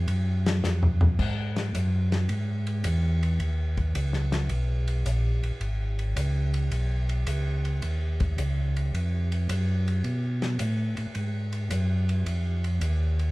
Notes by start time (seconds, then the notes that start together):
0.08 F#2, ride
0.46 snare, ride
0.64 F2, snare, hi-hat pedal
0.83 floor tom
1.01 floor tom
1.18 G#2, kick, crash
1.56 snare, ride
1.75 F#2, hi-hat pedal, ride
2.12 snare, ride
2.29 G#2, ride
2.67 ride
2.84 E2, hi-hat pedal, ride
3.23 ride
3.40 D#2, ride
3.77 kick, ride
3.95 C#2, hi-hat pedal, ride
4.13 snare
4.32 snare, ride
4.49 B1, ride
4.88 ride
5.06 A#1, hi-hat pedal, ride
5.42 A#1, ride
5.60 G#1, ride
5.99 ride
6.16 C#2, hi-hat pedal, ride
6.54 ride
6.71 B1, ride
7.09 ride
7.27 C#2, hi-hat pedal, ride
7.65 ride
7.82 D#2, ride
8.20 kick, ride
8.38 C#2, hi-hat pedal, ride
8.76 ride
8.94 F2, ride
9.32 ride
9.49 F#2, hi-hat pedal, ride
9.88 ride
10.04 B2, ride
10.42 snare, ride
10.59 A2, hi-hat pedal, ride
10.97 A2, ride
11.15 G#2, ride
11.53 ride
11.71 F#2, hi-hat pedal, ride
12.09 ride
12.26 F2, ride
12.64 ride
12.81 D#2, hi-hat pedal, ride
13.19 ride